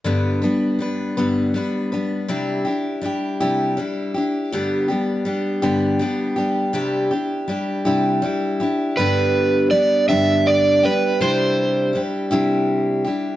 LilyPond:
<<
  \new Staff \with { instrumentName = "Electric slide guitar" } { \time 6/8 \key g \major \tempo 4. = 54 r2. | r2. | r2. | r2. |
b'4 d''8 e''8 d''8 b'8 | c''4 r2 | }
  \new Staff \with { instrumentName = "Steel-string acoustic guitar" } { \time 6/8 \key g \major <g, d g b d' b'>8 <g b d' b'>8 <g b d' b'>8 <g, d g b d' b'>8 <g b d' b'>8 <g b d' b'>8 | <c g d' e' g'>8 <d' e' g'>8 <g d' e' g'>8 <c g d' e' g'>8 <g d' e' g'>8 <d' e' g'>8 | <g, d g b d' g'>8 <g b d' g'>8 <g b d' g'>8 <g, d g b d' g'>8 <g b d' g'>8 <g b d' g'>8 | <c g d' e' g'>8 <d' e' g'>8 <g d' e' g'>8 <c g d' e' g'>8 <g d' e' g'>8 <d' e' g'>8 |
<g, d g b d' g'>4 <g b d' g'>8 <g, d g b d' g'>4 <g b d' g'>8 | <c g d' e' g'>4 <g d' e' g'>8 <c g d' e' g'>4 <d' e' g'>8 | }
>>